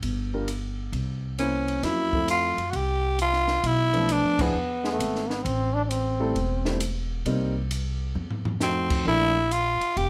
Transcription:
0.02 upright bass G1, kick, ride
0.34 grand piano G3 D4 F4 A#4
0.48 hi-hat pedal, ride
0.92 upright bass C2, kick, ride
1.39 grand piano A#3 C#4 E4 C5, tenor saxophone C#4, hi-hat pedal, ride
1.68 ride
1.83 upright bass F2, grand piano F#3 A#3 C#4 F4 A#4, tenor saxophone E4, kick, snare, ride
2.13 grand piano F3 A3 C4 E4 A4, kick
2.28 tenor saxophone F4, hi-hat pedal, ride
2.58 upright bass F#2, ride
2.70 upright bass C2, tenor saxophone F#4, kick, ride
2.75 tenor saxophone G4
3.19 tenor saxophone F4, hi-hat pedal, ride
3.33 snare
3.48 snare
3.63 upright bass B1, tenor saxophone E4, kick, ride
3.93 grand piano F3 A3 B3 D4 A4, ride
4.09 tenor saxophone D4, hi-hat pedal, ride
4.24 upright bass F2
4.38 upright bass D2, grand piano F3 B3 D4 E4 G#4, tenor saxophone B3, kick, crash
4.54 upright bass E2
4.84 trombone G#3, snare
4.92 trombone A3
4.99 upright bass G#1, hi-hat pedal, ride
5.15 snare
5.29 trombone B3, snare
5.44 upright bass A1, trombone C4, kick, ride
5.74 trombone D4
5.85 trombone D4
5.89 trombone C4, hi-hat pedal, ride
6.20 grand piano G3 A3 C4 E4 A4
6.35 upright bass E1, kick, ride
6.65 grand piano G3 A3 C4 E4 C5, snare
6.80 hi-hat pedal, ride
7.25 upright bass C2, grand piano G3 A#3 C4 D#4 A#4, kick, ride
7.71 hi-hat pedal, ride
8.15 upright bass F2, mid tom
8.31 floor tom
8.45 floor tom
8.60 grand piano F3 A3 C4 D#4 F#4, tenor saxophone C4, snare, hi-hat pedal
8.90 kick, crash
9.05 upright bass A#1, grand piano F3 A3 A#3 D4 A4, tenor saxophone E4, kick
9.51 tenor saxophone F4, hi-hat pedal, ride
9.81 muted upright bass stroke, ride
9.97 upright bass F1, tenor saxophone G4, kick, ride

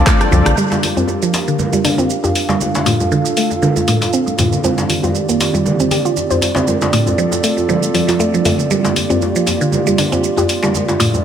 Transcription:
Already playing: analog synth pad C5 F5 A5 D6
0.06 synth arpeggio sound A3, analog polysynth C4 D4 F4 A4 D5, kick, cross-stick, clap, djembe tone, shaker
0.20 cross-stick, closed hi-hat, muted conga, high conga, shaker
0.31 sub bass C2, synth arpeggio sound F3, analog polysynth C4 D4 F4 A4 D5, djembe tone, low conga, djembe bass, shaker
0.45 sub bass A1, cross-stick, closed hi-hat, muted conga, low conga, shaker
0.57 synth arpeggio sound G3, analog polysynth A#3 D4 F4 G4 D5, analog synth pad D4 G4 A#4 F5, high conga, shaker
0.72 djembe slap, low conga, shaker
0.83 open hi-hat, muted conga, djembe tone, shaker
0.97 synth arpeggio sound C4, high conga, djembe bass, shaker
1.07 muted conga, djembe tone, shaker
1.22 synth arpeggio sound F3, shaker
1.33 open hi-hat, djembe slap, muted conga, djembe tone, shaker
1.48 synth arpeggio sound D3, shaker
1.59 high conga, low conga, shaker
1.73 synth arpeggio sound G3, muted conga, djembe tone, shaker
1.84 synth arpeggio sound D4, open hi-hat, high conga, low conga, shaker
1.98 synth arpeggio sound C4, muted conga, djembe tone, shaker
2.10 shaker
2.24 synth arpeggio sound G4, muted conga, djembe tone, high conga, djembe bass, shaker
2.35 open hi-hat, shaker
2.49 synth arpeggio sound G3, djembe slap, muted conga, low conga, shaker
2.61 analog synth pad F4 A4, analog polysynth F4 A4 D5, high conga, djembe tone, shaker
2.75 djembe slap, low conga, shaker
2.85 synth arpeggio sound A2, open hi-hat, muted conga, djembe tone, shaker
3.00 high conga, djembe bass, shaker
3.11 synth arpeggio sound D3, muted conga, djembe tone, shaker
3.26 shaker
3.37 synth arpeggio sound A3, open hi-hat, muted conga, shaker
3.51 djembe tone, shaker
3.62 synth arpeggio sound D3, high conga, low conga, shaker
3.76 muted conga, djembe tone, shaker
3.88 synth arpeggio sound A2, open hi-hat, high conga, shaker
4.02 open hi-hat, djembe slap, muted conga, djembe tone, shaker
4.13 synth arpeggio sound C4, shaker
4.27 muted conga, high conga, shaker
4.38 synth arpeggio sound A2, open hi-hat, djembe tone, low conga, djembe bass, shaker
4.52 muted conga, low conga, shaker
4.64 analog synth pad D#3 C4 G4 D5, analog polysynth C4 D4 D#4 G4 D5, synth arpeggio sound C4, djembe tone, high conga, shaker
4.78 djembe slap, low conga, shaker
4.89 open hi-hat, muted conga, djembe tone, shaker
5.03 synth arpeggio sound F4, high conga, djembe bass, shaker
5.15 muted conga, shaker
5.29 synth arpeggio sound A#3, djembe tone, shaker
5.41 open hi-hat, djembe slap, muted conga, shaker
5.54 synth arpeggio sound G3, djembe tone, shaker
5.65 high conga, low conga, shaker
5.80 synth arpeggio sound C4, muted conga, djembe tone, shaker
5.91 synth arpeggio sound G4, open hi-hat, high conga, low conga, shaker
6.04 synth arpeggio sound F4, muted conga, shaker
6.17 djembe tone, shaker
6.30 synth arpeggio sound C5, muted conga, high conga, djembe bass, shaker
6.41 open hi-hat, djembe tone, shaker
6.55 synth arpeggio sound C4, djembe slap, muted conga, low conga, shaker
6.67 analog polysynth C4 D4 F4 A4 D5, analog synth pad F4 A4, djembe tone, high conga, shaker
6.81 djembe slap, low conga, shaker
6.93 synth arpeggio sound A2, open hi-hat, muted conga, shaker
7.06 high conga, djembe tone, djembe bass, shaker
7.18 synth arpeggio sound F3, muted conga, shaker
7.32 djembe tone, shaker
7.44 synth arpeggio sound A3, open hi-hat, muted conga, shaker
7.58 djembe tone, shaker
7.69 synth arpeggio sound F3, high conga, low conga, shaker
7.83 muted conga, shaker
7.94 synth arpeggio sound F3, open hi-hat, djembe tone, high conga, shaker
8.08 synth arpeggio sound F3, open hi-hat, muted conga, djembe slap, shaker
8.19 synth arpeggio sound A3, djembe tone, shaker
8.34 synth arpeggio sound F3, muted conga, high conga, shaker
8.45 synth arpeggio sound A3, open hi-hat, djembe tone, djembe bass, low conga, shaker
8.59 muted conga, low conga, shaker
8.71 synth arpeggio sound G3, analog polysynth A#3 D4 F4 G4 D5, analog synth pad A#3 F4 G4, high conga, shaker
8.85 djembe slap, low conga, shaker
8.96 open hi-hat, muted conga, djembe tone, shaker
9.10 synth arpeggio sound C4, high conga, djembe bass, shaker
9.21 muted conga, djembe tone, shaker
9.36 synth arpeggio sound F3, shaker
9.46 open hi-hat, djembe slap, muted conga, djembe tone, shaker
9.61 synth arpeggio sound D3, shaker
9.72 high conga, low conga, shaker
9.87 synth arpeggio sound G3, muted conga, djembe tone, shaker
9.98 synth arpeggio sound D4, open hi-hat, high conga, low conga, shaker
10.12 synth arpeggio sound C4, muted conga, djembe tone, shaker
10.24 shaker
10.37 synth arpeggio sound G4, muted conga, high conga, djembe tone, djembe bass, shaker
10.49 open hi-hat, shaker
10.63 synth arpeggio sound G3, djembe slap, muted conga, low conga, shaker
10.74 analog synth pad A3 D4 D5, analog polysynth F4 A4 D5, djembe tone, high conga, shaker
10.88 djembe slap, low conga, shaker
11.00 synth arpeggio sound A2, open hi-hat, muted conga, djembe tone, shaker
11.14 high conga, djembe bass, shaker

